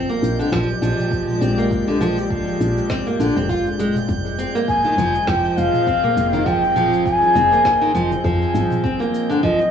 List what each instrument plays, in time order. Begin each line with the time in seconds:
Already playing: synth drone A#2 G#3 C4 G4 D5, synth texture G6
0.09 nylon-string guitar A#3, cabasa
0.23 fm bass A#1, cabasa
0.39 nylon-string guitar D3, cabasa
0.52 fm bass A#1, nylon-string guitar F3, kick, snare, cabasa
0.70 cabasa
0.82 fm bass A#1, nylon-string guitar F3, cabasa
0.99 mid tom, cabasa
1.12 kick, cabasa
1.28 mid tom, cabasa
1.41 fm bass A#1, nylon-string guitar C4, cabasa
1.58 nylon-string guitar A#3, cabasa
1.71 kick, cabasa
1.87 nylon-string guitar D3, cabasa
2.01 nylon-string guitar F3, mid tom, cabasa
2.18 cabasa
2.30 nylon-string guitar F3, kick, cabasa
2.48 cabasa
2.60 fm bass A#1, cabasa
2.78 cabasa
2.90 nylon-string guitar C4, kick, snare, cabasa
3.07 nylon-string guitar A#3, cabasa
3.20 fm bass A#1, nylon-string guitar D3, cabasa
3.36 fm bass F1, nylon-string guitar C4, cabasa
3.49 nylon-string guitar F4, kick, cabasa
3.67 cabasa
3.79 nylon-string guitar G#3, cabasa
3.95 mid tom, cabasa
4.08 fm bass F1, synth drone F3, kick, high conga, cabasa
4.25 muted conga, cabasa
4.34 synth drone D#5
4.38 nylon-string guitar C4, cabasa
4.47 synth drone C4
4.55 nylon-string guitar A#3, cabasa
4.68 bansuri G#5, kick, cabasa
4.85 nylon-string guitar D#3, synth drone G#4, muted conga, cabasa
4.98 fm bass F1, nylon-string guitar F3, high conga, low conga, cabasa
5.15 cabasa
5.27 fm bass F1, nylon-string guitar F3, bansuri G5, kick, snare, cabasa
5.45 cabasa
5.51 bansuri G5
5.57 fm bass F1, bansuri F5, high conga, cabasa
5.73 mid tom, cabasa
5.87 nylon-string guitar C4, kick, cabasa
6.03 nylon-string guitar A#3, mid tom, cabasa
6.17 fm bass F1, cabasa
6.33 nylon-string guitar D#3, low conga, cabasa
6.46 nylon-string guitar F3, bansuri G5, kick, high conga, cabasa
6.62 muted conga, cabasa
6.76 nylon-string guitar F3, mid tom, cabasa
6.93 cabasa
7.06 bansuri G#5, kick, cabasa
7.22 muted conga, cabasa
7.35 fm bass F1, nylon-string guitar C4, high conga, low conga, cabasa
7.52 nylon-string guitar A#3, cabasa
7.65 kick, snare, cabasa
7.81 nylon-string guitar D#3, cabasa
7.95 fm bass F1, nylon-string guitar F3, cabasa
8.11 low conga, cabasa
8.24 fm bass F2, nylon-string guitar F3, kick, high conga, cabasa
8.42 cabasa
8.54 fm bass G#1, muted conga, high conga, cabasa
8.70 mid tom, muted conga, cabasa
8.83 synth drone A#2, nylon-string guitar C4, kick, high conga, cabasa
8.99 nylon-string guitar A#3, muted conga, cabasa
9.14 synth drone G#3, cabasa
9.25 synth drone G4
9.29 nylon-string guitar D3, synth drone C5, cabasa
9.43 nylon-string guitar F3, bansuri D#5, kick, cabasa
9.59 muted conga, cabasa